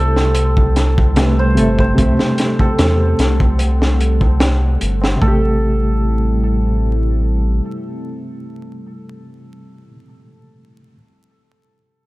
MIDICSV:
0, 0, Header, 1, 7, 480
1, 0, Start_track
1, 0, Tempo, 810811
1, 1166, Time_signature, 4, 2, 24, 8
1, 7142, End_track
2, 0, Start_track
2, 0, Title_t, "Hammered dulcimer"
2, 0, Program_c, 0, 15
2, 0, Note_on_c, 0, 69, 95
2, 0, Note_on_c, 0, 72, 98
2, 814, Note_off_c, 0, 72, 0
2, 824, Note_on_c, 0, 72, 85
2, 1063, Note_off_c, 0, 72, 0
2, 1066, Note_on_c, 0, 72, 90
2, 1537, Note_off_c, 0, 69, 0
2, 1539, Note_on_c, 0, 69, 85
2, 2628, Note_off_c, 0, 72, 0
2, 3085, Note_off_c, 0, 69, 0
2, 3087, Note_on_c, 0, 69, 92
2, 5855, Note_off_c, 0, 69, 0
2, 7142, End_track
3, 0, Start_track
3, 0, Title_t, "Ambient pad"
3, 0, Program_c, 1, 92
3, 0, Note_on_c, 1, 55, 77
3, 0, Note_on_c, 1, 60, 77
3, 0, Note_on_c, 1, 64, 77
3, 0, Note_on_c, 1, 69, 83
3, 1150, Note_off_c, 1, 64, 0
3, 1174, Note_on_c, 1, 78, 71
3, 3066, Note_off_c, 1, 55, 0
3, 3066, Note_off_c, 1, 69, 0
3, 3067, Note_off_c, 1, 60, 0
3, 3071, Note_off_c, 1, 78, 0
3, 3090, Note_on_c, 1, 55, 79
3, 3093, Note_on_c, 1, 60, 74
3, 3093, Note_on_c, 1, 64, 72
3, 3093, Note_on_c, 1, 69, 83
3, 5458, Note_off_c, 1, 55, 0
3, 5459, Note_off_c, 1, 69, 0
3, 5460, Note_off_c, 1, 60, 0
3, 5460, Note_off_c, 1, 64, 0
3, 7142, End_track
4, 0, Start_track
4, 0, Title_t, "Reed electric piano"
4, 0, Program_c, 2, 4
4, 0, Control_c, 2, 64, 127
4, 0, Note_on_c, 2, 48, 80
4, 0, Note_on_c, 2, 57, 73
4, 0, Note_on_c, 2, 67, 89
4, 652, Note_off_c, 2, 48, 0
4, 664, Note_off_c, 2, 57, 0
4, 674, Note_off_c, 2, 67, 0
4, 689, Note_on_c, 2, 48, 84
4, 697, Note_on_c, 2, 57, 74
4, 711, Note_on_c, 2, 71, 85
4, 900, Note_off_c, 2, 48, 0
4, 905, Note_off_c, 2, 57, 0
4, 911, Note_off_c, 2, 71, 0
4, 919, Note_on_c, 2, 48, 98
4, 930, Note_on_c, 2, 57, 90
4, 941, Note_on_c, 2, 69, 108
4, 1135, Note_off_c, 2, 48, 0
4, 1141, Note_off_c, 2, 57, 0
4, 1146, Note_off_c, 2, 69, 0
4, 1153, Note_on_c, 2, 48, 81
4, 1176, Note_on_c, 2, 57, 73
4, 1197, Note_on_c, 2, 67, 94
4, 2572, Note_off_c, 2, 48, 0
4, 2584, Note_off_c, 2, 57, 0
4, 2595, Note_off_c, 2, 67, 0
4, 3057, Note_on_c, 2, 48, 88
4, 3091, Note_on_c, 2, 57, 82
4, 3093, Control_c, 2, 64, 0
4, 3124, Note_on_c, 2, 67, 96
4, 3192, Control_c, 2, 64, 127
4, 5824, Note_off_c, 2, 48, 0
4, 5859, Note_off_c, 2, 57, 0
4, 5889, Note_off_c, 2, 67, 0
4, 6494, Control_c, 2, 64, 0
4, 7142, End_track
5, 0, Start_track
5, 0, Title_t, "Analog synth bass"
5, 0, Program_c, 3, 38
5, 0, Note_on_c, 3, 36, 95
5, 932, Note_on_c, 3, 31, 84
5, 941, Note_off_c, 3, 36, 0
5, 1142, Note_off_c, 3, 31, 0
5, 1177, Note_on_c, 3, 36, 90
5, 1283, Note_off_c, 3, 36, 0
5, 1652, Note_on_c, 3, 40, 107
5, 1862, Note_off_c, 3, 40, 0
5, 1887, Note_on_c, 3, 36, 104
5, 2825, Note_off_c, 3, 36, 0
5, 2853, Note_on_c, 3, 31, 80
5, 3062, Note_off_c, 3, 31, 0
5, 3089, Note_on_c, 3, 33, 93
5, 4504, Note_off_c, 3, 33, 0
5, 7142, End_track
6, 0, Start_track
6, 0, Title_t, "Tabla"
6, 98, Note_on_c, 9, 60, 77
6, 157, Note_off_c, 9, 60, 0
6, 205, Note_on_c, 9, 60, 63
6, 264, Note_off_c, 9, 60, 0
6, 341, Note_on_c, 9, 60, 36
6, 400, Note_off_c, 9, 60, 0
6, 580, Note_on_c, 9, 60, 65
6, 640, Note_off_c, 9, 60, 0
6, 684, Note_on_c, 9, 60, 64
6, 744, Note_off_c, 9, 60, 0
6, 815, Note_on_c, 9, 60, 39
6, 874, Note_off_c, 9, 60, 0
6, 1055, Note_on_c, 9, 60, 73
6, 1114, Note_off_c, 9, 60, 0
6, 1172, Note_on_c, 9, 60, 58
6, 1231, Note_off_c, 9, 60, 0
6, 1292, Note_on_c, 9, 60, 37
6, 1352, Note_off_c, 9, 60, 0
6, 1538, Note_on_c, 9, 60, 81
6, 1597, Note_off_c, 9, 60, 0
6, 1649, Note_on_c, 9, 60, 55
6, 1708, Note_off_c, 9, 60, 0
6, 1775, Note_on_c, 9, 60, 35
6, 1834, Note_off_c, 9, 60, 0
6, 2016, Note_on_c, 9, 60, 71
6, 2075, Note_off_c, 9, 60, 0
6, 2123, Note_on_c, 9, 60, 62
6, 2182, Note_off_c, 9, 60, 0
6, 2249, Note_on_c, 9, 60, 38
6, 2308, Note_off_c, 9, 60, 0
6, 2490, Note_on_c, 9, 60, 74
6, 2549, Note_off_c, 9, 60, 0
6, 2609, Note_on_c, 9, 60, 61
6, 2668, Note_off_c, 9, 60, 0
6, 2732, Note_on_c, 9, 60, 36
6, 2792, Note_off_c, 9, 60, 0
6, 2969, Note_on_c, 9, 60, 75
6, 3028, Note_off_c, 9, 60, 0
6, 7142, End_track
7, 0, Start_track
7, 0, Title_t, "Drums"
7, 97, Note_on_c, 9, 38, 41
7, 156, Note_off_c, 9, 38, 0
7, 205, Note_on_c, 9, 42, 82
7, 264, Note_off_c, 9, 42, 0
7, 336, Note_on_c, 9, 36, 86
7, 396, Note_off_c, 9, 36, 0
7, 450, Note_on_c, 9, 42, 66
7, 453, Note_on_c, 9, 38, 50
7, 509, Note_off_c, 9, 42, 0
7, 512, Note_off_c, 9, 38, 0
7, 579, Note_on_c, 9, 36, 104
7, 639, Note_off_c, 9, 36, 0
7, 687, Note_on_c, 9, 42, 81
7, 692, Note_on_c, 9, 38, 118
7, 746, Note_off_c, 9, 42, 0
7, 751, Note_off_c, 9, 38, 0
7, 930, Note_on_c, 9, 42, 63
7, 989, Note_off_c, 9, 42, 0
7, 1057, Note_on_c, 9, 36, 90
7, 1117, Note_off_c, 9, 36, 0
7, 1173, Note_on_c, 9, 36, 119
7, 1173, Note_on_c, 9, 42, 86
7, 1232, Note_off_c, 9, 36, 0
7, 1232, Note_off_c, 9, 42, 0
7, 1299, Note_on_c, 9, 38, 51
7, 1358, Note_off_c, 9, 38, 0
7, 1409, Note_on_c, 9, 42, 76
7, 1419, Note_on_c, 9, 38, 50
7, 1468, Note_off_c, 9, 42, 0
7, 1478, Note_off_c, 9, 38, 0
7, 1535, Note_on_c, 9, 36, 99
7, 1595, Note_off_c, 9, 36, 0
7, 1649, Note_on_c, 9, 42, 84
7, 1652, Note_on_c, 9, 38, 121
7, 1708, Note_off_c, 9, 42, 0
7, 1711, Note_off_c, 9, 38, 0
7, 1888, Note_on_c, 9, 42, 67
7, 1894, Note_on_c, 9, 38, 56
7, 1947, Note_off_c, 9, 42, 0
7, 1953, Note_off_c, 9, 38, 0
7, 2014, Note_on_c, 9, 36, 90
7, 2073, Note_off_c, 9, 36, 0
7, 2126, Note_on_c, 9, 42, 83
7, 2185, Note_off_c, 9, 42, 0
7, 2261, Note_on_c, 9, 38, 56
7, 2320, Note_off_c, 9, 38, 0
7, 2371, Note_on_c, 9, 42, 72
7, 2430, Note_off_c, 9, 42, 0
7, 2492, Note_on_c, 9, 36, 86
7, 2552, Note_off_c, 9, 36, 0
7, 2607, Note_on_c, 9, 38, 114
7, 2611, Note_on_c, 9, 42, 86
7, 2666, Note_off_c, 9, 38, 0
7, 2670, Note_off_c, 9, 42, 0
7, 2847, Note_on_c, 9, 42, 70
7, 2907, Note_off_c, 9, 42, 0
7, 2981, Note_on_c, 9, 38, 55
7, 3040, Note_off_c, 9, 38, 0
7, 3088, Note_on_c, 9, 36, 98
7, 3147, Note_off_c, 9, 36, 0
7, 7142, End_track
0, 0, End_of_file